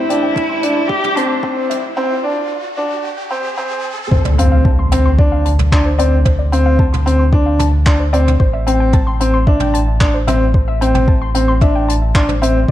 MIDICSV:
0, 0, Header, 1, 9, 480
1, 0, Start_track
1, 0, Tempo, 535714
1, 1765, Time_signature, 4, 2, 24, 8
1, 11392, End_track
2, 0, Start_track
2, 0, Title_t, "Synth arpeggio sound"
2, 0, Program_c, 0, 84
2, 85, Note_on_c, 0, 79, 79
2, 163, Note_off_c, 0, 79, 0
2, 202, Note_on_c, 0, 79, 79
2, 250, Note_off_c, 0, 79, 0
2, 323, Note_on_c, 0, 81, 80
2, 370, Note_off_c, 0, 81, 0
2, 442, Note_on_c, 0, 84, 80
2, 521, Note_off_c, 0, 84, 0
2, 682, Note_on_c, 0, 84, 75
2, 761, Note_off_c, 0, 84, 0
2, 801, Note_on_c, 0, 76, 106
2, 917, Note_off_c, 0, 76, 0
2, 921, Note_on_c, 0, 79, 76
2, 1000, Note_off_c, 0, 79, 0
2, 1043, Note_on_c, 0, 81, 75
2, 1121, Note_off_c, 0, 81, 0
2, 1283, Note_on_c, 0, 84, 83
2, 1331, Note_off_c, 0, 84, 0
2, 1404, Note_on_c, 0, 72, 73
2, 1482, Note_off_c, 0, 72, 0
2, 1522, Note_on_c, 0, 76, 97
2, 1638, Note_off_c, 0, 76, 0
2, 3687, Note_on_c, 0, 72, 104
2, 3800, Note_off_c, 0, 72, 0
2, 3808, Note_on_c, 0, 74, 72
2, 3853, Note_off_c, 0, 74, 0
2, 3927, Note_on_c, 0, 77, 79
2, 4004, Note_off_c, 0, 77, 0
2, 4048, Note_on_c, 0, 77, 85
2, 4093, Note_off_c, 0, 77, 0
2, 4170, Note_on_c, 0, 81, 76
2, 4214, Note_off_c, 0, 81, 0
2, 4291, Note_on_c, 0, 84, 75
2, 4366, Note_off_c, 0, 84, 0
2, 4531, Note_on_c, 0, 84, 81
2, 4605, Note_off_c, 0, 84, 0
2, 4647, Note_on_c, 0, 74, 107
2, 4760, Note_off_c, 0, 74, 0
2, 4767, Note_on_c, 0, 77, 79
2, 4844, Note_off_c, 0, 77, 0
2, 4887, Note_on_c, 0, 81, 73
2, 4964, Note_off_c, 0, 81, 0
2, 5126, Note_on_c, 0, 84, 85
2, 5172, Note_off_c, 0, 84, 0
2, 5247, Note_on_c, 0, 72, 75
2, 5323, Note_off_c, 0, 72, 0
2, 5363, Note_on_c, 0, 74, 101
2, 5478, Note_off_c, 0, 74, 0
2, 5605, Note_on_c, 0, 72, 101
2, 5719, Note_off_c, 0, 72, 0
2, 5724, Note_on_c, 0, 74, 74
2, 5771, Note_off_c, 0, 74, 0
2, 5847, Note_on_c, 0, 77, 79
2, 5924, Note_off_c, 0, 77, 0
2, 5967, Note_on_c, 0, 77, 80
2, 6013, Note_off_c, 0, 77, 0
2, 6088, Note_on_c, 0, 81, 80
2, 6133, Note_off_c, 0, 81, 0
2, 6207, Note_on_c, 0, 84, 76
2, 6283, Note_off_c, 0, 84, 0
2, 6444, Note_on_c, 0, 84, 77
2, 6522, Note_off_c, 0, 84, 0
2, 6564, Note_on_c, 0, 74, 104
2, 6679, Note_off_c, 0, 74, 0
2, 6685, Note_on_c, 0, 77, 82
2, 6762, Note_off_c, 0, 77, 0
2, 6805, Note_on_c, 0, 81, 78
2, 6882, Note_off_c, 0, 81, 0
2, 7044, Note_on_c, 0, 84, 90
2, 7091, Note_off_c, 0, 84, 0
2, 7164, Note_on_c, 0, 72, 75
2, 7242, Note_off_c, 0, 72, 0
2, 7283, Note_on_c, 0, 74, 104
2, 7398, Note_off_c, 0, 74, 0
2, 7524, Note_on_c, 0, 72, 98
2, 7639, Note_off_c, 0, 72, 0
2, 7646, Note_on_c, 0, 76, 80
2, 7692, Note_off_c, 0, 76, 0
2, 7769, Note_on_c, 0, 79, 82
2, 7844, Note_off_c, 0, 79, 0
2, 7887, Note_on_c, 0, 79, 84
2, 7933, Note_off_c, 0, 79, 0
2, 8005, Note_on_c, 0, 81, 85
2, 8052, Note_off_c, 0, 81, 0
2, 8125, Note_on_c, 0, 84, 78
2, 8203, Note_off_c, 0, 84, 0
2, 8366, Note_on_c, 0, 84, 78
2, 8443, Note_off_c, 0, 84, 0
2, 8485, Note_on_c, 0, 76, 103
2, 8599, Note_off_c, 0, 76, 0
2, 8606, Note_on_c, 0, 79, 79
2, 8683, Note_off_c, 0, 79, 0
2, 8725, Note_on_c, 0, 81, 77
2, 8802, Note_off_c, 0, 81, 0
2, 8964, Note_on_c, 0, 84, 90
2, 9011, Note_off_c, 0, 84, 0
2, 9086, Note_on_c, 0, 72, 73
2, 9163, Note_off_c, 0, 72, 0
2, 9205, Note_on_c, 0, 76, 96
2, 9319, Note_off_c, 0, 76, 0
2, 9449, Note_on_c, 0, 72, 100
2, 9561, Note_off_c, 0, 72, 0
2, 9568, Note_on_c, 0, 76, 74
2, 9613, Note_off_c, 0, 76, 0
2, 9688, Note_on_c, 0, 79, 81
2, 9764, Note_off_c, 0, 79, 0
2, 9809, Note_on_c, 0, 79, 79
2, 9853, Note_off_c, 0, 79, 0
2, 9929, Note_on_c, 0, 81, 78
2, 9973, Note_off_c, 0, 81, 0
2, 10049, Note_on_c, 0, 84, 77
2, 10124, Note_off_c, 0, 84, 0
2, 10287, Note_on_c, 0, 84, 79
2, 10364, Note_off_c, 0, 84, 0
2, 10406, Note_on_c, 0, 76, 108
2, 10520, Note_off_c, 0, 76, 0
2, 10531, Note_on_c, 0, 79, 78
2, 10605, Note_off_c, 0, 79, 0
2, 10648, Note_on_c, 0, 81, 76
2, 10724, Note_off_c, 0, 81, 0
2, 10889, Note_on_c, 0, 84, 82
2, 10934, Note_off_c, 0, 84, 0
2, 11009, Note_on_c, 0, 72, 75
2, 11084, Note_off_c, 0, 72, 0
2, 11126, Note_on_c, 0, 76, 98
2, 11240, Note_off_c, 0, 76, 0
2, 11392, End_track
3, 0, Start_track
3, 0, Title_t, "String quartet"
3, 0, Program_c, 1, 48
3, 0, Note_on_c, 1, 57, 61
3, 0, Note_on_c, 1, 62, 64
3, 0, Note_on_c, 1, 67, 60
3, 0, Note_on_c, 1, 72, 63
3, 1762, Note_off_c, 1, 67, 0
3, 1762, Note_off_c, 1, 72, 0
3, 1764, Note_off_c, 1, 57, 0
3, 1764, Note_off_c, 1, 62, 0
3, 11392, End_track
4, 0, Start_track
4, 0, Title_t, "Cello"
4, 0, Program_c, 2, 42
4, 0, Note_on_c, 2, 64, 94
4, 790, Note_on_c, 2, 67, 111
4, 803, Note_off_c, 2, 64, 0
4, 1037, Note_on_c, 2, 62, 91
4, 1050, Note_off_c, 2, 67, 0
4, 1521, Note_off_c, 2, 62, 0
4, 11392, End_track
5, 0, Start_track
5, 0, Title_t, "Grand piano"
5, 0, Program_c, 3, 0
5, 84, Note_on_c, 3, 62, 80
5, 349, Note_off_c, 3, 62, 0
5, 562, Note_on_c, 3, 62, 81
5, 829, Note_off_c, 3, 62, 0
5, 1044, Note_on_c, 3, 60, 78
5, 1177, Note_off_c, 3, 60, 0
5, 1284, Note_on_c, 3, 60, 77
5, 1550, Note_off_c, 3, 60, 0
5, 1764, Note_on_c, 3, 60, 93
5, 1897, Note_off_c, 3, 60, 0
5, 2003, Note_on_c, 3, 62, 79
5, 2269, Note_off_c, 3, 62, 0
5, 2482, Note_on_c, 3, 62, 85
5, 2748, Note_off_c, 3, 62, 0
5, 2962, Note_on_c, 3, 60, 78
5, 3096, Note_off_c, 3, 60, 0
5, 3203, Note_on_c, 3, 60, 83
5, 3469, Note_off_c, 3, 60, 0
5, 3927, Note_on_c, 3, 60, 73
5, 4192, Note_off_c, 3, 60, 0
5, 4407, Note_on_c, 3, 60, 82
5, 4539, Note_off_c, 3, 60, 0
5, 4649, Note_on_c, 3, 62, 83
5, 4913, Note_off_c, 3, 62, 0
5, 5128, Note_on_c, 3, 62, 80
5, 5260, Note_off_c, 3, 62, 0
5, 5367, Note_on_c, 3, 60, 82
5, 5499, Note_off_c, 3, 60, 0
5, 5845, Note_on_c, 3, 60, 84
5, 6111, Note_off_c, 3, 60, 0
5, 6326, Note_on_c, 3, 60, 86
5, 6459, Note_off_c, 3, 60, 0
5, 6568, Note_on_c, 3, 62, 91
5, 6833, Note_off_c, 3, 62, 0
5, 7047, Note_on_c, 3, 62, 85
5, 7179, Note_off_c, 3, 62, 0
5, 7286, Note_on_c, 3, 60, 88
5, 7419, Note_off_c, 3, 60, 0
5, 7766, Note_on_c, 3, 60, 81
5, 8031, Note_off_c, 3, 60, 0
5, 8248, Note_on_c, 3, 60, 81
5, 8380, Note_off_c, 3, 60, 0
5, 8487, Note_on_c, 3, 62, 93
5, 8752, Note_off_c, 3, 62, 0
5, 8968, Note_on_c, 3, 62, 81
5, 9100, Note_off_c, 3, 62, 0
5, 9208, Note_on_c, 3, 60, 82
5, 9340, Note_off_c, 3, 60, 0
5, 9688, Note_on_c, 3, 60, 78
5, 9952, Note_off_c, 3, 60, 0
5, 10167, Note_on_c, 3, 60, 84
5, 10299, Note_off_c, 3, 60, 0
5, 10409, Note_on_c, 3, 62, 83
5, 10674, Note_off_c, 3, 62, 0
5, 10890, Note_on_c, 3, 62, 80
5, 11021, Note_off_c, 3, 62, 0
5, 11127, Note_on_c, 3, 60, 88
5, 11259, Note_off_c, 3, 60, 0
5, 11392, End_track
6, 0, Start_track
6, 0, Title_t, "Analog synth bass"
6, 0, Program_c, 4, 38
6, 0, Note_on_c, 4, 33, 84
6, 1763, Note_off_c, 4, 33, 0
6, 3687, Note_on_c, 4, 38, 91
6, 7502, Note_off_c, 4, 38, 0
6, 7526, Note_on_c, 4, 33, 89
6, 11342, Note_off_c, 4, 33, 0
6, 11392, End_track
7, 0, Start_track
7, 0, Title_t, "Impact"
7, 0, Program_c, 5, 103
7, 3688, Note_on_c, 5, 60, 68
7, 5607, Note_off_c, 5, 60, 0
7, 11392, End_track
8, 0, Start_track
8, 0, Title_t, "Riser"
8, 0, Program_c, 6, 103
8, 0, Note_on_c, 6, 60, 65
8, 3684, Note_off_c, 6, 60, 0
8, 11392, End_track
9, 0, Start_track
9, 0, Title_t, "Drums"
9, 89, Note_on_c, 9, 42, 79
9, 179, Note_off_c, 9, 42, 0
9, 321, Note_on_c, 9, 36, 108
9, 329, Note_on_c, 9, 45, 60
9, 411, Note_off_c, 9, 36, 0
9, 419, Note_off_c, 9, 45, 0
9, 563, Note_on_c, 9, 42, 67
9, 653, Note_off_c, 9, 42, 0
9, 801, Note_on_c, 9, 36, 115
9, 891, Note_off_c, 9, 36, 0
9, 930, Note_on_c, 9, 45, 62
9, 1020, Note_off_c, 9, 45, 0
9, 1046, Note_on_c, 9, 42, 72
9, 1136, Note_off_c, 9, 42, 0
9, 1281, Note_on_c, 9, 36, 104
9, 1371, Note_off_c, 9, 36, 0
9, 1528, Note_on_c, 9, 45, 57
9, 1529, Note_on_c, 9, 42, 80
9, 1618, Note_off_c, 9, 42, 0
9, 1618, Note_off_c, 9, 45, 0
9, 3687, Note_on_c, 9, 36, 97
9, 3776, Note_off_c, 9, 36, 0
9, 3807, Note_on_c, 9, 45, 70
9, 3896, Note_off_c, 9, 45, 0
9, 3930, Note_on_c, 9, 42, 75
9, 4020, Note_off_c, 9, 42, 0
9, 4167, Note_on_c, 9, 36, 100
9, 4256, Note_off_c, 9, 36, 0
9, 4406, Note_on_c, 9, 42, 82
9, 4410, Note_on_c, 9, 45, 73
9, 4495, Note_off_c, 9, 42, 0
9, 4499, Note_off_c, 9, 45, 0
9, 4647, Note_on_c, 9, 36, 117
9, 4736, Note_off_c, 9, 36, 0
9, 4889, Note_on_c, 9, 42, 70
9, 4978, Note_off_c, 9, 42, 0
9, 5009, Note_on_c, 9, 45, 72
9, 5098, Note_off_c, 9, 45, 0
9, 5126, Note_on_c, 9, 36, 99
9, 5134, Note_on_c, 9, 39, 72
9, 5216, Note_off_c, 9, 36, 0
9, 5224, Note_off_c, 9, 39, 0
9, 5369, Note_on_c, 9, 42, 74
9, 5458, Note_off_c, 9, 42, 0
9, 5603, Note_on_c, 9, 45, 73
9, 5605, Note_on_c, 9, 36, 102
9, 5693, Note_off_c, 9, 45, 0
9, 5695, Note_off_c, 9, 36, 0
9, 5850, Note_on_c, 9, 42, 77
9, 5939, Note_off_c, 9, 42, 0
9, 6085, Note_on_c, 9, 36, 114
9, 6174, Note_off_c, 9, 36, 0
9, 6215, Note_on_c, 9, 45, 74
9, 6305, Note_off_c, 9, 45, 0
9, 6336, Note_on_c, 9, 42, 68
9, 6426, Note_off_c, 9, 42, 0
9, 6565, Note_on_c, 9, 36, 115
9, 6654, Note_off_c, 9, 36, 0
9, 6805, Note_on_c, 9, 45, 69
9, 6808, Note_on_c, 9, 42, 75
9, 6894, Note_off_c, 9, 45, 0
9, 6898, Note_off_c, 9, 42, 0
9, 7046, Note_on_c, 9, 36, 105
9, 7046, Note_on_c, 9, 39, 82
9, 7135, Note_off_c, 9, 36, 0
9, 7135, Note_off_c, 9, 39, 0
9, 7289, Note_on_c, 9, 42, 63
9, 7378, Note_off_c, 9, 42, 0
9, 7417, Note_on_c, 9, 45, 66
9, 7507, Note_off_c, 9, 45, 0
9, 7526, Note_on_c, 9, 36, 102
9, 7615, Note_off_c, 9, 36, 0
9, 7770, Note_on_c, 9, 42, 75
9, 7860, Note_off_c, 9, 42, 0
9, 8001, Note_on_c, 9, 45, 68
9, 8005, Note_on_c, 9, 36, 110
9, 8091, Note_off_c, 9, 45, 0
9, 8095, Note_off_c, 9, 36, 0
9, 8248, Note_on_c, 9, 42, 84
9, 8337, Note_off_c, 9, 42, 0
9, 8485, Note_on_c, 9, 36, 112
9, 8575, Note_off_c, 9, 36, 0
9, 8600, Note_on_c, 9, 45, 71
9, 8690, Note_off_c, 9, 45, 0
9, 8730, Note_on_c, 9, 42, 72
9, 8820, Note_off_c, 9, 42, 0
9, 8965, Note_on_c, 9, 36, 106
9, 8966, Note_on_c, 9, 39, 73
9, 9055, Note_off_c, 9, 36, 0
9, 9056, Note_off_c, 9, 39, 0
9, 9206, Note_on_c, 9, 42, 73
9, 9207, Note_on_c, 9, 45, 68
9, 9296, Note_off_c, 9, 42, 0
9, 9297, Note_off_c, 9, 45, 0
9, 9445, Note_on_c, 9, 36, 104
9, 9535, Note_off_c, 9, 36, 0
9, 9691, Note_on_c, 9, 42, 74
9, 9781, Note_off_c, 9, 42, 0
9, 9808, Note_on_c, 9, 45, 60
9, 9898, Note_off_c, 9, 45, 0
9, 9926, Note_on_c, 9, 36, 110
9, 10015, Note_off_c, 9, 36, 0
9, 10166, Note_on_c, 9, 42, 89
9, 10256, Note_off_c, 9, 42, 0
9, 10404, Note_on_c, 9, 45, 60
9, 10406, Note_on_c, 9, 36, 120
9, 10493, Note_off_c, 9, 45, 0
9, 10496, Note_off_c, 9, 36, 0
9, 10657, Note_on_c, 9, 42, 80
9, 10746, Note_off_c, 9, 42, 0
9, 10886, Note_on_c, 9, 36, 105
9, 10889, Note_on_c, 9, 39, 82
9, 10976, Note_off_c, 9, 36, 0
9, 10979, Note_off_c, 9, 39, 0
9, 11010, Note_on_c, 9, 45, 63
9, 11099, Note_off_c, 9, 45, 0
9, 11136, Note_on_c, 9, 42, 72
9, 11225, Note_off_c, 9, 42, 0
9, 11392, End_track
0, 0, End_of_file